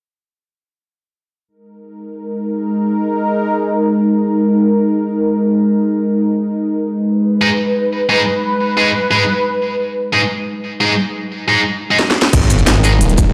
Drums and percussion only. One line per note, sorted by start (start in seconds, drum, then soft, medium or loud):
11.99 snare medium
12.11 snare medium
12.22 snare medium
12.33 kick loud
12.33 closed hi-hat loud
12.33 crash loud
12.50 closed hi-hat medium
12.50 shaker medium
12.59 shaker soft
12.67 snare loud
12.67 closed hi-hat loud
12.84 open hi-hat medium
12.84 shaker medium
13.01 closed hi-hat loud
13.09 closed hi-hat soft
13.18 kick loud
13.18 closed hi-hat medium
13.18 shaker medium